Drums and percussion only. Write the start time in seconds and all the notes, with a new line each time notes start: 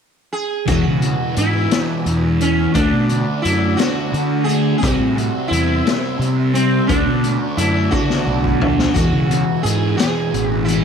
0.67 kick, closed hi-hat
1.02 closed hi-hat
1.36 closed hi-hat
1.71 snare, closed hi-hat
2.06 closed hi-hat
2.41 closed hi-hat
2.75 kick, closed hi-hat
3.09 closed hi-hat
3.45 closed hi-hat
3.79 snare, closed hi-hat
4.14 closed hi-hat
4.49 closed hi-hat
4.83 kick, closed hi-hat
5.18 closed hi-hat
5.53 closed hi-hat
5.87 snare, closed hi-hat
6.22 closed hi-hat
6.55 closed hi-hat
6.89 kick, closed hi-hat
7.24 closed hi-hat
7.58 closed hi-hat
7.92 kick, high tom
8.10 snare
8.44 kick
8.61 floor tom
8.79 snare
8.96 kick, closed hi-hat
9.31 closed hi-hat
9.66 closed hi-hat
9.99 snare, closed hi-hat
10.34 closed hi-hat
10.68 closed hi-hat